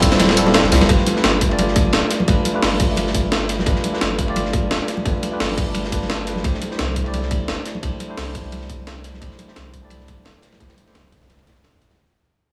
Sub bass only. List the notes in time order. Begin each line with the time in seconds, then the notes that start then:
Already playing: D1
0.37 D1
0.64 F1
0.72 C2
0.81 F1
0.89 G1
1.24 G1
1.93 D1
2.28 G1
2.63 G1
3.15 G1
3.67 G1
4.01 G1
4.71 D1
5.06 G1
5.40 G1
5.92 G1
6.44 C2
6.79 C2
7.48 G1
7.83 C2
8.18 C2
8.70 C2
9.22 C2
9.57 C2
10.26 G1
10.60 C2
10.95 C2
11.47 C2
11.73 E2
11.82 A1
11.91 E2